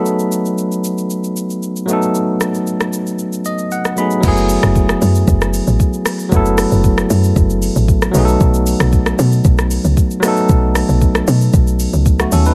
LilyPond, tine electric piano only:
<<
  \new Staff \with { instrumentName = "Tine electric piano" } { \time 4/4 \key fis \dorian \tempo 4 = 115 r1 | r2 r8 dis''8 fis''8 b''8 | r1 | r1 |
r1 | r2. r16 <a fis'>16 <cis' a'>16 <dis' b'>16 | }
  \new Staff \with { instrumentName = "Tine electric piano" } { \time 4/4 \key fis \dorian <fis a b dis' a'>2.~ <fis a b dis' a'>8 <fis a b dis' a'>8~ | <fis a b dis' a'>2.~ <fis a b dis' a'>8 <fis a b dis' gis'>8 | <fis gis a b e' gis'>1 | <fis a b e' a'>2.~ <fis a b e' a'>8 <fis a b dis' gis' a'>8~ |
<fis a b dis' gis' a'>2.~ <fis a b dis' gis' a'>8 <fis a b dis' a'>8~ | <fis a b dis' a'>2.~ <fis a b dis' a'>8 r8 | }
>>